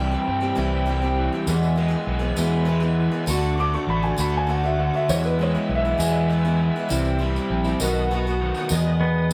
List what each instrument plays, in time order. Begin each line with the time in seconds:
Already playing: fingered electric bass C2, overdriven electric guitar C3 E3 E4, steel-string acoustic guitar E3 G3 C4, tonewheel organ C4 E5 G5 E6, upright piano B4
0.00 steel-string acoustic guitar G4
0.11 steel-string acoustic guitar G3 C4 G4
0.28 fingered electric bass G2, overdriven electric guitar C4
0.41 steel-string acoustic guitar G3 C4 G4
0.55 fingered electric bass C2, steel-string acoustic guitar C3 E3 G3 C4 G4, overdriven electric guitar E4
0.86 steel-string acoustic guitar E3 G3 C4 G4
1.02 steel-string acoustic guitar G3 C4 G4
1.18 overdriven electric guitar E3
1.32 steel-string acoustic guitar G3 C4 G4
1.47 fingered electric bass E2, steel-string acoustic guitar E2 B2 E3 G#3 B3 G#4, tonewheel organ B4 G#5, tambourine
1.63 tambourine
1.76 steel-string acoustic guitar E3 G#3 B3 G#4
1.88 steel-string acoustic guitar E3 G#3 B3 G#4
2.07 fingered electric bass B1, overdriven electric guitar B3
2.19 steel-string acoustic guitar E3 G#3 B3 G#4
2.36 steel-string acoustic guitar E2 B2 E3 G#3 B3 G#4, fingered electric bass E2, overdriven electric guitar E4, tambourine
2.65 steel-string acoustic guitar E3 G#3 B3 G#4
2.80 steel-string acoustic guitar E3 G#3 B3 G#4
2.99 overdriven electric guitar E3
3.11 steel-string acoustic guitar E3 G#3 B3 G#4
3.26 fingered electric bass D2, steel-string acoustic guitar D3 A3 D4 F#4, tambourine
3.30 tonewheel organ A4 D5 F#5 D6
3.43 tambourine
3.56 steel-string acoustic guitar D3 A3, upright piano C#6
3.60 steel-string acoustic guitar D4 F#4, upright piano D6
3.73 steel-string acoustic guitar A3 D4 F#4, upright piano C#6
3.87 fingered electric bass A1, overdriven electric guitar D4, upright piano B5
4.03 steel-string acoustic guitar A3 D4 F#4, upright piano G#5
4.16 fingered electric bass D2, steel-string acoustic guitar D3 A3 D4 F#4, upright piano B5, tambourine
4.37 upright piano G#5
4.47 steel-string acoustic guitar D3 A3 D4 F#4, upright piano F#5
4.63 steel-string acoustic guitar A3 D4 F#4, upright piano E5
4.79 overdriven electric guitar D3, upright piano F#5
4.94 steel-string acoustic guitar A3 D4 F#4, upright piano E5
5.08 steel-string acoustic guitar E2 B2 E3 G#3 B3 E4, fingered electric bass E2, tonewheel organ B4 E5 G#5 E6, upright piano C#5, tambourine
5.23 upright piano B4, tambourine
5.39 steel-string acoustic guitar E3 G#3 B3 E4
5.43 upright piano C#5
5.54 steel-string acoustic guitar E3 G#3 B3 E4
5.69 fingered electric bass B1, overdriven electric guitar B3
5.75 upright piano E5
5.85 steel-string acoustic guitar E3 G#3 B3 E4
5.98 steel-string acoustic guitar E2 B2 E3 G#3 B3 E4, fingered electric bass E2, overdriven electric guitar G#4, tambourine
6.29 steel-string acoustic guitar E3 G#3 B3 E4
6.45 steel-string acoustic guitar E3 G#3 B3 E4
6.60 overdriven electric guitar E3
6.76 steel-string acoustic guitar E3 G#3 B3 E4
6.89 fingered electric bass C2, steel-string acoustic guitar C3 E3 G3 C4 E4, tonewheel organ C5 E5 G5, tambourine
7.05 tambourine
7.19 steel-string acoustic guitar E3 G3 C4 E4
7.36 steel-string acoustic guitar G3 C4 E4, tambourine
7.50 fingered electric bass A#1, overdriven electric guitar C4
7.64 steel-string acoustic guitar G3 C4 E4, tambourine
7.79 fingered electric bass B1, steel-string acoustic guitar B2 D#3 A3 B3 F#4, tonewheel organ B4 F#5 A5 D#6, tambourine
7.95 tambourine
8.11 steel-string acoustic guitar D#3 A3 B3 F#4
8.27 steel-string acoustic guitar A3 B3 F#4
8.40 overdriven electric guitar D#3
8.54 steel-string acoustic guitar A3 B3 F#4, tambourine
8.69 fingered electric bass E2, steel-string acoustic guitar E2 B2 D#3 G#3 B3, tonewheel organ B4 D#5 G#5 D#6, tambourine
8.73 steel-string acoustic guitar G#4
9.01 pedal steel guitar B3